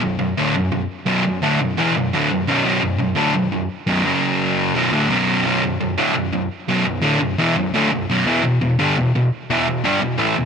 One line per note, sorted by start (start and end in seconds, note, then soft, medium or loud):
0.02 0.16 B1 medium
0.02 0.16 F#2 medium
0.19 0.33 B1 medium
0.19 0.33 F#2 medium
0.37 0.54 D2 medium
0.37 0.54 A2 loud
0.37 0.54 D3 medium
0.54 0.68 B1 medium
0.54 0.69 F#2 medium
0.72 0.86 B1 soft
0.72 0.86 F#2 medium
1.06 1.23 B1 medium
1.06 1.24 F#2 loud
1.06 1.24 B2 loud
1.25 1.39 B1 medium
1.25 1.39 F#2 medium
1.43 1.59 D2 medium
1.43 1.60 A2 medium
1.43 1.60 D3 medium
1.61 1.74 B1 medium
1.61 1.75 F#2 medium
1.78 1.95 E2 medium
1.78 1.95 B2 loud
1.78 1.95 E3 medium
1.97 2.10 B1 medium
1.97 2.10 F#2 medium
2.14 2.30 D2 medium
2.14 2.30 A2 medium
2.14 2.31 D3 loud
2.32 2.45 B1 medium
2.32 2.45 F#2 medium
2.48 2.64 B1 loud
2.48 2.64 F#2 loud
2.48 2.64 B2 loud
2.65 2.80 B1 medium
2.65 2.80 F#2 medium
2.65 2.82 B2 loud
2.81 2.96 B1 medium
2.81 2.96 F#2 medium
2.99 3.13 B1 medium
2.99 3.14 F#2 medium
3.16 3.34 D2 medium
3.16 3.34 A2 medium
3.16 3.34 D3 loud
3.34 3.49 B1 medium
3.34 3.49 F#2 medium
3.52 3.67 B1 medium
3.52 3.67 F#2 medium
3.87 4.04 B1 loud
3.87 4.04 F#2 loud
3.87 4.05 B2 loud
4.05 4.74 F#2 medium
4.05 4.75 C#3 medium
4.05 4.75 F#3 loud
4.75 4.91 B1 loud
4.75 4.92 F#2 loud
4.75 4.93 B2 loud
4.92 5.09 D2 loud
4.92 5.09 A2 medium
4.92 5.10 D3 medium
5.09 5.44 B1 loud
5.09 5.45 F#2 loud
5.09 5.45 B2 loud
5.46 5.61 B1 medium
5.46 5.62 F#2 medium
5.46 5.63 B2 medium
5.63 5.77 B1 medium
5.63 5.77 F#2 medium
5.81 5.95 B1 soft
5.81 5.95 F#2 medium
5.98 6.15 D2 medium
5.98 6.15 A2 medium
5.98 6.15 D3 loud
6.15 6.30 B1 medium
6.15 6.30 F#2 medium
6.33 6.47 B1 medium
6.33 6.47 F#2 medium
6.69 6.85 B1 loud
6.69 6.85 F#2 medium
6.69 6.86 B2 loud
6.86 7.00 B1 medium
6.86 7.00 F#2 medium
7.02 7.19 D2 medium
7.02 7.20 A2 loud
7.02 7.20 D3 loud
7.20 7.34 B1 medium
7.20 7.35 F#2 medium
7.38 7.55 E2 medium
7.38 7.56 B2 loud
7.38 7.56 E3 medium
7.57 7.70 B1 medium
7.57 7.71 F#2 medium
7.74 7.91 D2 medium
7.74 7.91 A2 medium
7.74 7.91 D3 medium
7.92 8.06 B1 medium
7.92 8.06 F#2 medium
8.10 8.26 B1 loud
8.10 8.26 F#2 loud
8.10 8.25 B2 loud
8.26 8.42 E2 medium
8.26 8.42 B2 loud
8.26 8.44 E3 loud
8.43 8.57 E2 medium
8.43 8.57 B2 medium
8.61 8.75 E2 medium
8.61 8.75 B2 medium
8.79 8.96 G2 medium
8.79 8.96 D3 loud
8.79 8.96 G3 medium
8.97 9.11 E2 medium
8.97 9.11 B2 medium
9.15 9.28 E2 medium
9.15 9.29 B2 medium
9.50 9.66 E2 medium
9.50 9.66 B2 loud
9.50 9.67 E3 loud
9.68 9.81 E2 medium
9.68 9.81 B2 medium
9.84 10.00 G2 medium
9.84 10.00 D3 loud
9.84 10.01 G3 loud
10.01 10.15 E2 medium
10.01 10.15 B2 medium
10.18 10.35 A2 loud
10.18 10.35 E3 medium
10.18 10.36 A3 medium
10.37 10.45 E2 medium
10.37 10.45 B2 medium